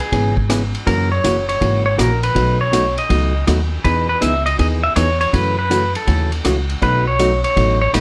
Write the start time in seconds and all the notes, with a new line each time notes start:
0.00 G#4
0.12 G#1 C#3 E3 B3 C#4 G#4, kick, ride
0.37 kick
0.49 C#3 E3 B3 C#4 G#4, cross-stick, hi-hat pedal, ride
0.75 ride
0.86 F#2 C#3 E3 A#3 C#4 F#4 A#4, kick, ride
1.12 C#5
1.24 F#1 C#3 E3 A#3 C#4 F#4, hi-hat pedal, ride
1.49 C#5, ride
1.61 G#1 C#3 E3 A#3 C#4 F#4, kick, ride
1.86 C#5
1.98 A#1 C#3 E3 A#3 C#4 F#4 A#4, cross-stick, hi-hat pedal, ride
2.23 B4, ride
2.35 B1 B2 F#3 A3 D#4 F#4, kick, ride
2.61 C#5
2.72 B2 F#3 A3 D#4 F#4, hi-hat pedal, ride
2.98 D#5, ride
3.09 C#2 B2 F#3 A3 D#4 F#4, kick, ride
3.47 D#2 B2 F#3 A3 D#4 F#4, cross-stick, hi-hat pedal, ride
3.84 E2 E3 B3 D#4 G#4 B4, kick, ride
4.09 B4
4.21 C#2 E3 B3 D#4 G#4 E5, hi-hat pedal, ride
4.46 D#5, ride
4.59 D#2 E3 B3 D#4 G#4 D#5, kick, ride
4.83 E5
4.96 E2 E3 B3 D#4 G#4 C#5, cross-stick, hi-hat pedal, ride
5.21 C#5, ride
5.33 F#2 C#3 E3 A3 C#4 F#4 B4, kick, ride
5.59 B4
5.70 C#3 E3 A3 C#4 F#4, hi-hat pedal, ride
5.95 A4, ride
6.07 D#2 C#3 E3 A3 C#4 F#4, kick, ride
6.32 ride
6.45 C#2 C#3 E3 A3 C#4 F#4, cross-stick, hi-hat pedal, ride
6.70 ride
6.82 B1 B2 F#3 A3 D#4 F#4 B4, kick, ride
7.07 C#5
7.19 B2 F#3 A3 D#4 F#4, hi-hat pedal, ride
7.44 C#5, ride
7.56 A1 B2 F#3 A3 D#4 F#4, kick, ride
7.82 C#5
7.93 B1 B2 F#3 A3 D#4 F#4 B4, cross-stick, hi-hat pedal, ride